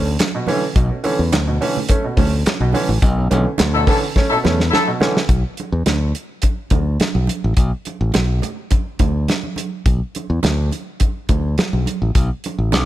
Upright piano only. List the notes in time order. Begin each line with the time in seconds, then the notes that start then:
0.19 A3 C#4
0.35 B2
0.47 D3 E3 A3 C#4
0.76 B2
0.91 A3 C#4
1.03 D3 E3 A3 C#4
1.32 A3 C#4
1.47 B2
1.61 D3 E3 A3 C#4
1.89 A3 C#4
2.04 B2
2.17 A3 C#4
2.45 A3 C#4
2.61 B2
2.74 D3 E3 A3 C#4
3.02 B2
3.17 A3 C#4
3.30 D3 E3 A3 C#4
3.59 A3 C#4
3.74 B2
3.87 D3 E3 A3 C#4
4.16 A3 C#4
4.31 B2
4.44 A3 C#4
4.72 A3 C#4
4.87 B2
5.00 D3 E3 A3 C#4